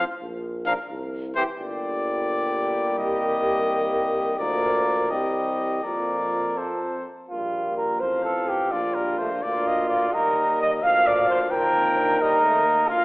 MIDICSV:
0, 0, Header, 1, 6, 480
1, 0, Start_track
1, 0, Key_signature, -2, "major"
1, 0, Tempo, 465116
1, 205, Time_signature, 6, 3, 24, 8
1, 4526, Tempo, 485437
1, 7406, Tempo, 472441
1, 9806, Tempo, 462250
1, 13323, End_track
2, 0, Start_track
2, 0, Title_t, "Trumpet"
2, 0, Program_c, 0, 56
2, 674, Note_on_c, 0, 77, 54
2, 758, Note_off_c, 0, 77, 0
2, 1393, Note_on_c, 0, 72, 60
2, 1476, Note_off_c, 0, 72, 0
2, 1636, Note_on_c, 0, 74, 59
2, 3036, Note_off_c, 0, 74, 0
2, 3080, Note_on_c, 0, 75, 59
2, 4501, Note_off_c, 0, 75, 0
2, 4530, Note_on_c, 0, 74, 57
2, 5234, Note_on_c, 0, 75, 46
2, 5249, Note_off_c, 0, 74, 0
2, 5965, Note_on_c, 0, 74, 41
2, 5980, Note_off_c, 0, 75, 0
2, 6691, Note_on_c, 0, 72, 35
2, 6706, Note_off_c, 0, 74, 0
2, 7173, Note_off_c, 0, 72, 0
2, 8131, Note_on_c, 0, 77, 48
2, 8844, Note_on_c, 0, 74, 54
2, 8859, Note_off_c, 0, 77, 0
2, 9080, Note_on_c, 0, 70, 47
2, 9095, Note_off_c, 0, 74, 0
2, 9320, Note_on_c, 0, 72, 47
2, 9336, Note_off_c, 0, 70, 0
2, 9568, Note_on_c, 0, 74, 54
2, 9583, Note_off_c, 0, 72, 0
2, 9817, Note_on_c, 0, 75, 54
2, 9833, Note_off_c, 0, 74, 0
2, 10043, Note_off_c, 0, 75, 0
2, 10049, Note_on_c, 0, 74, 50
2, 10286, Note_off_c, 0, 74, 0
2, 10292, Note_on_c, 0, 75, 56
2, 11015, Note_on_c, 0, 77, 55
2, 11030, Note_off_c, 0, 75, 0
2, 11721, Note_on_c, 0, 79, 64
2, 11737, Note_off_c, 0, 77, 0
2, 12455, Note_on_c, 0, 75, 65
2, 12471, Note_off_c, 0, 79, 0
2, 13165, Note_off_c, 0, 75, 0
2, 13171, Note_on_c, 0, 77, 72
2, 13323, Note_off_c, 0, 77, 0
2, 13323, End_track
3, 0, Start_track
3, 0, Title_t, "Flugelhorn"
3, 0, Program_c, 1, 56
3, 687, Note_on_c, 1, 70, 53
3, 767, Note_off_c, 1, 70, 0
3, 1410, Note_on_c, 1, 67, 59
3, 1487, Note_off_c, 1, 67, 0
3, 1637, Note_on_c, 1, 67, 63
3, 4490, Note_off_c, 1, 67, 0
3, 4534, Note_on_c, 1, 70, 52
3, 5242, Note_on_c, 1, 67, 50
3, 5257, Note_off_c, 1, 70, 0
3, 5957, Note_on_c, 1, 70, 42
3, 5972, Note_off_c, 1, 67, 0
3, 6690, Note_on_c, 1, 69, 40
3, 6704, Note_off_c, 1, 70, 0
3, 7172, Note_off_c, 1, 69, 0
3, 7401, Note_on_c, 1, 65, 57
3, 7852, Note_off_c, 1, 65, 0
3, 7887, Note_on_c, 1, 70, 60
3, 8117, Note_on_c, 1, 72, 72
3, 8132, Note_off_c, 1, 70, 0
3, 8361, Note_off_c, 1, 72, 0
3, 8367, Note_on_c, 1, 69, 56
3, 8614, Note_on_c, 1, 67, 57
3, 8629, Note_off_c, 1, 69, 0
3, 8848, Note_on_c, 1, 65, 57
3, 8863, Note_off_c, 1, 67, 0
3, 9568, Note_off_c, 1, 65, 0
3, 9576, Note_on_c, 1, 65, 67
3, 10301, Note_on_c, 1, 70, 68
3, 10317, Note_off_c, 1, 65, 0
3, 10779, Note_off_c, 1, 70, 0
3, 10794, Note_on_c, 1, 75, 74
3, 10897, Note_off_c, 1, 75, 0
3, 11030, Note_on_c, 1, 77, 91
3, 11266, Note_on_c, 1, 74, 78
3, 11282, Note_off_c, 1, 77, 0
3, 11493, Note_off_c, 1, 74, 0
3, 11500, Note_on_c, 1, 72, 72
3, 11606, Note_off_c, 1, 72, 0
3, 11735, Note_on_c, 1, 70, 86
3, 12440, Note_off_c, 1, 70, 0
3, 12447, Note_on_c, 1, 70, 88
3, 13150, Note_on_c, 1, 65, 80
3, 13166, Note_off_c, 1, 70, 0
3, 13323, Note_off_c, 1, 65, 0
3, 13323, End_track
4, 0, Start_track
4, 0, Title_t, "French horn"
4, 0, Program_c, 2, 60
4, 674, Note_on_c, 2, 62, 58
4, 759, Note_off_c, 2, 62, 0
4, 1384, Note_on_c, 2, 60, 56
4, 1470, Note_off_c, 2, 60, 0
4, 1633, Note_on_c, 2, 58, 67
4, 4488, Note_off_c, 2, 58, 0
4, 4524, Note_on_c, 2, 58, 61
4, 5241, Note_on_c, 2, 60, 51
4, 5256, Note_off_c, 2, 58, 0
4, 5946, Note_off_c, 2, 60, 0
4, 5952, Note_on_c, 2, 58, 47
4, 6690, Note_on_c, 2, 60, 38
4, 6705, Note_off_c, 2, 58, 0
4, 7172, Note_off_c, 2, 60, 0
4, 7403, Note_on_c, 2, 58, 46
4, 8128, Note_on_c, 2, 60, 43
4, 8144, Note_off_c, 2, 58, 0
4, 8842, Note_off_c, 2, 60, 0
4, 8848, Note_on_c, 2, 62, 49
4, 10261, Note_off_c, 2, 62, 0
4, 10291, Note_on_c, 2, 58, 51
4, 10999, Note_off_c, 2, 58, 0
4, 11019, Note_on_c, 2, 58, 53
4, 11722, Note_off_c, 2, 58, 0
4, 11731, Note_on_c, 2, 58, 60
4, 11840, Note_off_c, 2, 58, 0
4, 11967, Note_on_c, 2, 60, 52
4, 12199, Note_on_c, 2, 62, 60
4, 12214, Note_off_c, 2, 60, 0
4, 12437, Note_on_c, 2, 63, 64
4, 12453, Note_off_c, 2, 62, 0
4, 13154, Note_on_c, 2, 65, 74
4, 13170, Note_off_c, 2, 63, 0
4, 13323, Note_off_c, 2, 65, 0
4, 13323, End_track
5, 0, Start_track
5, 0, Title_t, "Trombone"
5, 0, Program_c, 3, 57
5, 685, Note_on_c, 3, 53, 54
5, 765, Note_off_c, 3, 53, 0
5, 1393, Note_on_c, 3, 52, 56
5, 1475, Note_off_c, 3, 52, 0
5, 1630, Note_on_c, 3, 55, 56
5, 4486, Note_off_c, 3, 55, 0
5, 4531, Note_on_c, 3, 53, 47
5, 5237, Note_on_c, 3, 55, 48
5, 5252, Note_off_c, 3, 53, 0
5, 5958, Note_off_c, 3, 55, 0
5, 5964, Note_on_c, 3, 53, 42
5, 7149, Note_off_c, 3, 53, 0
5, 7399, Note_on_c, 3, 55, 41
5, 8125, Note_on_c, 3, 53, 44
5, 8140, Note_off_c, 3, 55, 0
5, 8847, Note_off_c, 3, 53, 0
5, 8853, Note_on_c, 3, 53, 39
5, 9099, Note_on_c, 3, 55, 44
5, 9114, Note_off_c, 3, 53, 0
5, 9334, Note_off_c, 3, 55, 0
5, 9341, Note_on_c, 3, 57, 45
5, 9446, Note_off_c, 3, 57, 0
5, 9577, Note_on_c, 3, 58, 46
5, 10295, Note_on_c, 3, 55, 45
5, 10311, Note_off_c, 3, 58, 0
5, 11011, Note_on_c, 3, 53, 56
5, 11026, Note_off_c, 3, 55, 0
5, 12452, Note_off_c, 3, 53, 0
5, 12457, Note_on_c, 3, 55, 67
5, 12688, Note_on_c, 3, 57, 60
5, 12704, Note_off_c, 3, 55, 0
5, 12925, Note_on_c, 3, 58, 59
5, 12940, Note_off_c, 3, 57, 0
5, 13323, Note_off_c, 3, 58, 0
5, 13323, End_track
6, 0, Start_track
6, 0, Title_t, "Bass trombone"
6, 0, Program_c, 4, 57
6, 206, Note_on_c, 4, 34, 50
6, 798, Note_off_c, 4, 34, 0
6, 914, Note_on_c, 4, 36, 57
6, 1509, Note_off_c, 4, 36, 0
6, 1632, Note_on_c, 4, 31, 57
6, 3034, Note_off_c, 4, 31, 0
6, 3080, Note_on_c, 4, 36, 58
6, 4501, Note_off_c, 4, 36, 0
6, 4539, Note_on_c, 4, 38, 58
6, 5237, Note_on_c, 4, 36, 48
6, 5252, Note_off_c, 4, 38, 0
6, 5960, Note_off_c, 4, 36, 0
6, 5968, Note_on_c, 4, 41, 41
6, 7151, Note_off_c, 4, 41, 0
6, 7410, Note_on_c, 4, 34, 41
6, 8138, Note_on_c, 4, 33, 44
6, 8153, Note_off_c, 4, 34, 0
6, 8860, Note_on_c, 4, 34, 42
6, 8875, Note_off_c, 4, 33, 0
6, 9578, Note_on_c, 4, 38, 42
6, 9593, Note_off_c, 4, 34, 0
6, 10292, Note_off_c, 4, 38, 0
6, 10298, Note_on_c, 4, 39, 48
6, 11003, Note_off_c, 4, 39, 0
6, 11018, Note_on_c, 4, 38, 50
6, 11721, Note_off_c, 4, 38, 0
6, 11727, Note_on_c, 4, 39, 55
6, 13138, Note_off_c, 4, 39, 0
6, 13165, Note_on_c, 4, 38, 61
6, 13323, Note_off_c, 4, 38, 0
6, 13323, End_track
0, 0, End_of_file